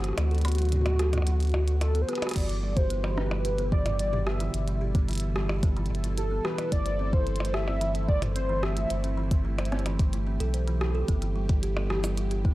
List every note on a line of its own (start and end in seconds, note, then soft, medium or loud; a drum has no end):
0.00 0.13 G1 loud
0.00 0.15 C3 medium
0.00 0.15 E3 medium
0.00 2.32 A3 medium
0.00 0.14 E4 medium
0.00 1.81 F#4 loud
0.00 0.15 A4 medium
0.00 2.37 D5 medium
0.00 2.37 B5 medium
0.00 cross-stick medium
0.00 closed hi-hat soft
0.04 closed hi-hat soft
0.08 cross-stick soft
0.13 cross-stick soft
0.18 1.53 D2 loud
0.18 2.34 D3 medium
0.18 2.34 F#3 medium
0.18 0.25 A3 medium
0.18 2.34 B3 medium
0.18 2.34 F#4 medium
0.18 closed hi-hat medium
0.18 percussion blips medium
0.31 0.39 A4 medium
0.31 closed hi-hat soft
0.35 closed hi-hat soft
0.38 closed hi-hat soft
0.41 closed hi-hat soft
0.45 0.49 B3 medium
0.45 closed hi-hat medium
0.45 percussion blips medium
0.48 closed hi-hat medium
0.52 closed hi-hat soft
0.55 closed hi-hat soft
0.58 0.63 F#3 medium
0.58 closed hi-hat medium
0.62 closed hi-hat soft
0.65 closed hi-hat soft
0.69 closed hi-hat soft
0.72 closed hi-hat medium
0.72 mid tom medium
0.77 mid tom medium
0.81 mid tom medium
0.86 0.93 A3 medium
0.86 closed hi-hat soft
0.86 mid tom soft
0.86 percussion blips medium
0.90 mid tom soft
0.95 mid tom soft
0.99 1.07 A4 medium
0.99 cross-stick loud
0.99 closed hi-hat medium
1.13 1.17 B3 medium
1.13 closed hi-hat medium
1.13 mid tom medium
1.13 percussion blips soft
1.18 percussion blips soft
1.22 percussion blips soft
1.27 1.31 F#3 loud
1.27 closed hi-hat medium
1.40 closed hi-hat soft
1.43 closed hi-hat soft
1.45 closed hi-hat soft
1.47 closed hi-hat soft
1.49 closed hi-hat soft
1.54 2.04 D2 medium
1.54 1.61 F#4 loud
1.54 percussion blips medium
1.68 1.75 F#4 medium
1.68 closed hi-hat soft
1.81 1.92 F#3 medium
1.81 2.03 A4 medium
1.81 closed hi-hat medium
1.81 percussion blips medium
1.95 1.99 B3 medium
1.95 closed hi-hat soft
2.02 2.10 C5 medium
2.08 2.19 B3 loud
2.08 2.37 B4 medium
2.08 cross-stick soft
2.08 closed hi-hat medium
2.13 cross-stick medium
2.13 closed hi-hat medium
2.18 cross-stick medium
2.22 2.33 F#4 loud
2.22 cross-stick medium
2.22 closed hi-hat medium
2.22 percussion blips medium
2.27 cross-stick medium
2.27 closed hi-hat medium
2.31 cross-stick loud
2.31 closed hi-hat medium
2.34 4.49 G1 loud
2.34 6.68 B2 medium
2.34 6.68 D3 medium
2.34 2.40 E3 loud
2.34 11.05 E4 medium
2.34 4.52 G4 medium
2.34 2.78 D5 loud
2.34 kick medium
2.34 closed hi-hat medium
2.36 6.68 G3 medium
2.36 closed hi-hat medium
2.36 crash loud
2.40 closed hi-hat soft
2.49 closed hi-hat soft
2.63 2.70 G3 medium
2.77 2.84 G4 medium
2.77 3.19 C5 loud
2.77 kick loud
2.77 closed hi-hat medium
2.90 2.95 B3 medium
2.90 closed hi-hat medium
3.04 3.08 E3 loud
3.04 percussion blips medium
3.18 3.71 B4 loud
3.18 cross-stick loud
3.31 3.39 G3 medium
3.31 percussion blips medium
3.45 3.52 G4 medium
3.45 closed hi-hat medium
3.58 3.63 B3 medium
3.58 closed hi-hat soft
3.72 3.77 E3 loud
3.72 3.97 D5 loud
3.72 kick loud
3.86 closed hi-hat medium
3.86 mid tom medium
3.86 percussion blips medium
3.99 4.07 G3 medium
3.99 4.28 D5 loud
3.99 closed hi-hat medium
4.13 4.20 G4 medium
4.13 mid tom medium
4.27 4.31 B3 medium
4.27 4.81 E5 loud
4.27 cross-stick loud
4.40 4.45 E3 loud
4.40 closed hi-hat medium
4.54 5.90 G1 loud
4.54 8.86 A4 medium
4.54 closed hi-hat medium
4.68 4.75 G3 medium
4.68 closed hi-hat soft
4.81 4.89 G4 medium
4.95 4.99 B3 medium
4.95 kick loud
4.95 closed hi-hat medium
5.08 5.13 E3 loud
5.08 closed hi-hat soft
5.11 closed hi-hat soft
5.13 closed hi-hat soft
5.15 closed hi-hat soft
5.18 closed hi-hat medium
5.20 closed hi-hat medium
5.36 5.43 G3 medium
5.36 cross-stick loud
5.49 5.57 G4 medium
5.49 percussion blips medium
5.63 5.67 B3 medium
5.63 kick loud
5.63 closed hi-hat medium
5.77 5.81 E3 loud
5.77 closed hi-hat soft
5.86 closed hi-hat soft
5.90 6.40 G1 medium
5.95 closed hi-hat soft
6.04 6.11 G3 medium
6.04 closed hi-hat medium
6.17 6.25 G4 medium
6.17 6.46 A4 medium
6.17 closed hi-hat medium
6.31 6.36 B3 medium
6.45 6.49 E3 loud
6.45 6.71 B4 medium
6.45 cross-stick loud
6.58 closed hi-hat medium
6.58 percussion blips soft
6.72 8.86 G1 loud
6.72 11.05 E3 medium
6.72 6.79 A3 medium
6.72 11.05 A3 medium
6.72 11.05 C4 medium
6.72 7.14 D5 loud
6.72 kick medium
6.72 closed hi-hat medium
6.86 6.93 C5 medium
6.86 closed hi-hat soft
6.99 7.04 C4 medium
7.13 7.17 E3 loud
7.13 7.55 C5 loud
7.13 kick loud
7.27 closed hi-hat soft
7.36 closed hi-hat soft
7.40 7.48 A3 medium
7.40 percussion blips medium
7.45 closed hi-hat medium
7.54 7.61 C5 medium
7.54 8.08 E5 loud
7.54 cross-stick loud
7.68 7.72 C4 medium
7.68 percussion blips medium
7.81 7.86 E3 loud
7.81 closed hi-hat medium
7.95 closed hi-hat soft
8.08 8.16 A3 medium
8.08 8.21 D5 loud
8.08 kick loud
8.22 8.29 C5 medium
8.22 closed hi-hat medium
8.22 mid tom medium
8.22 percussion blips soft
8.36 8.40 C4 medium
8.36 8.64 C5 loud
8.36 closed hi-hat medium
8.49 8.54 E3 loud
8.63 9.18 E5 loud
8.63 cross-stick loud
8.77 8.84 A3 medium
8.77 closed hi-hat medium
8.90 10.40 G1 loud
8.90 12.54 G4 medium
8.90 8.98 C5 medium
8.90 closed hi-hat medium
9.04 9.08 C4 medium
9.04 closed hi-hat soft
9.18 9.22 E3 loud
9.31 kick loud
9.31 closed hi-hat medium
9.45 9.52 A3 medium
9.59 9.66 C5 medium
9.59 closed hi-hat soft
9.59 percussion blips medium
9.65 closed hi-hat soft
9.72 9.77 C4 medium
9.72 cross-stick loud
9.72 closed hi-hat soft
9.79 closed hi-hat soft
9.86 9.90 E3 loud
9.86 closed hi-hat medium
9.86 percussion blips medium
9.99 kick loud
9.99 closed hi-hat medium
10.13 10.20 A3 medium
10.13 closed hi-hat soft
10.27 10.34 C4 medium
10.40 11.04 B1 medium
10.40 10.48 A4 loud
10.40 closed hi-hat medium
10.54 10.58 C5 medium
10.54 closed hi-hat medium
10.67 10.75 E3 loud
10.67 closed hi-hat soft
10.81 10.86 E3 medium
10.81 cross-stick loud
10.95 10.99 A4 loud
11.08 12.54 G1 loud
11.08 12.54 D3 medium
11.08 12.54 G3 medium
11.08 11.13 B3 medium
11.08 12.54 B3 medium
11.08 12.54 E4 medium
11.08 kick medium
11.08 closed hi-hat medium
11.22 11.26 E3 loud
11.22 closed hi-hat soft
11.36 11.47 G3 loud
11.49 11.57 G3 medium
11.49 kick loud
11.49 closed hi-hat medium
11.63 11.70 G4 medium
11.63 closed hi-hat medium
11.77 11.81 B3 medium
11.77 percussion blips medium
11.90 11.95 E3 loud
11.90 cross-stick loud
12.04 12.15 G3 loud
12.04 closed hi-hat medium
12.04 percussion blips medium
12.04 shaker medium
12.18 12.25 G3 medium
12.18 closed hi-hat medium
12.31 12.39 G4 medium
12.31 closed hi-hat soft
12.45 12.49 B3 medium
12.45 kick loud